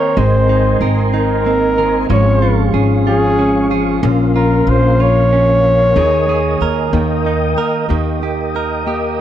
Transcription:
Already playing: steel-string acoustic guitar D#3 A#3 C4, clean electric guitar D#3 C4 D#4 A#4, tonewheel organ A#4 D#5 G5 C6, flugelhorn C#5
0.17 upright bass G#1, steel-string acoustic guitar D#3 C4, clean electric guitar G#3, flugelhorn C5, tonewheel organ D#5 G#5
0.49 steel-string acoustic guitar D#3, clean electric guitar D#4
0.81 upright bass G#1, steel-string acoustic guitar C4, clean electric guitar A#4
1.13 steel-string acoustic guitar D#3, clean electric guitar D#4, flugelhorn A#4
1.46 steel-string acoustic guitar A#3, clean electric guitar C4
1.78 steel-string acoustic guitar D#3, clean electric guitar A#4
2.10 upright bass G#1, steel-string acoustic guitar F3 C#4, clean electric guitar G#3, tonewheel organ C#4 G#4 F5 C#6, flugelhorn C#5
2.42 steel-string acoustic guitar F3, clean electric guitar F4
2.74 upright bass G#1, steel-string acoustic guitar C#4, clean electric guitar G#4
3.07 steel-string acoustic guitar F3, clean electric guitar F4, flugelhorn G#4
3.39 steel-string acoustic guitar G#3, clean electric guitar C#4
3.71 steel-string acoustic guitar F3, clean electric guitar G#4
4.03 upright bass A#1, clean electric guitar A#2, steel-string acoustic guitar F3 C#4, tonewheel organ A#4 F5 C6
4.36 steel-string acoustic guitar F3, clean electric guitar F4, flugelhorn A#4
4.67 upright bass A#1, steel-string acoustic guitar C#4, flugelhorn C5
5.00 steel-string acoustic guitar F3, clean electric guitar F4, flugelhorn C#5
5.33 clean electric guitar C#4
5.64 steel-string acoustic guitar F3
5.96 upright bass D#2, clean electric guitar D#3, steel-string acoustic guitar A#3 G#4, tonewheel organ D#5 G#5 D#6
6.28 steel-string acoustic guitar A#3, clean electric guitar G#4
6.61 upright bass D#2, steel-string acoustic guitar G#4, clean electric guitar A#4
6.93 upright bass D#2, clean electric guitar D#3, steel-string acoustic guitar A#3, tonewheel organ D#5 G5
7.25 steel-string acoustic guitar D#4, clean electric guitar D#4
7.57 steel-string acoustic guitar A#3, clean electric guitar A#4
7.89 upright bass D#2, clean electric guitar D#3, steel-string acoustic guitar A#3 G4, tonewheel organ A#4 D#5 G5 D#6
8.22 steel-string acoustic guitar A#3, clean electric guitar G4
8.55 steel-string acoustic guitar D#4, clean electric guitar A#4
8.86 steel-string acoustic guitar A#3, clean electric guitar G4

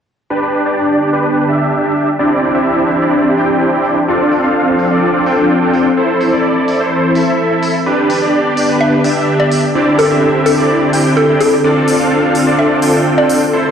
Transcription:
0.30 analog synth pad D3 B3 G4 D5, supersaw synth D4 G4 B4
0.54 open hi-hat
0.66 supersaw synth D4 G4 D5
1.01 open hi-hat
1.13 supersaw synth D4 G4 B4
1.48 supersaw synth D4 G4 E5, open hi-hat
1.84 supersaw synth D4 G4 E5
1.96 open hi-hat
2.19 analog synth pad E3 C4 D5, supersaw synth C4 D4 E4 G4 D5
2.43 open hi-hat
2.55 supersaw synth C4 D4 E4 G4 E5
2.90 open hi-hat
3.02 supersaw synth C4 D4 E4 G4 D5
3.37 supersaw synth C4 D4 E4 G4 G5, open hi-hat
3.73 supersaw synth C4 D4 E4 G4 G5
3.85 open hi-hat
4.08 analog synth pad F3 C4 A4, supersaw synth C4 D4 F4 A4 D5
4.32 open hi-hat
4.44 supersaw synth C4 D4 F4 A4 F5
4.79 open hi-hat
4.91 supersaw synth C4 D4 F4 A4 D5
5.26 supersaw synth C4 D4 F4 A4 G5, open hi-hat
5.62 supersaw synth C4 D4 F4 A4 G5
5.74 open hi-hat
5.97 analog synth pad E3 C5, supersaw synth E4 A4 C5
6.21 open hi-hat
6.33 supersaw synth E4 A4 D5
6.68 open hi-hat
6.80 supersaw synth E4 A4 C5
7.15 supersaw synth E4 A4 E5, open hi-hat
7.51 supersaw synth E4 A4 E5
7.63 open hi-hat
7.86 analog synth pad D3 B3 G4 B4, supersaw synth D4 G4 B4
8.10 open hi-hat
8.22 supersaw synth D4 G4 D5
8.57 open hi-hat
8.69 supersaw synth D4 G4 B4
8.81 synth pluck E5
9.04 supersaw synth D4 G4 E5, open hi-hat
9.40 supersaw synth D4 G4 E5, synth pluck D5
9.52 open hi-hat
9.75 analog synth pad C4 E4, supersaw synth C4 D4 E4 G4 D5
9.99 synth pluck A4, open hi-hat
10.11 supersaw synth C4 D4 E4 G4 E5
10.46 synth pluck A4, open hi-hat
10.58 supersaw synth C4 D4 E4 G4 D5
10.93 supersaw synth C4 D4 E4 G4 G5, open hi-hat
11.17 synth pluck A4
11.29 supersaw synth C4 D4 E4 G4 G5
11.41 synth pluck A4, open hi-hat
11.64 supersaw synth C4 D4 F4 A4 D5, analog synth pad F4 A4
11.88 open hi-hat
12.00 supersaw synth C4 D4 F4 A4 F5
12.35 open hi-hat
12.47 supersaw synth C4 D4 F4 A4 D5
12.59 synth pluck E5
12.82 supersaw synth C4 D4 F4 A4 G5, open hi-hat
13.18 supersaw synth C4 D4 F4 A4 G5, synth pluck D5
13.29 open hi-hat
13.53 analog synth pad C3 A3 E4, supersaw synth E4 A4 C5

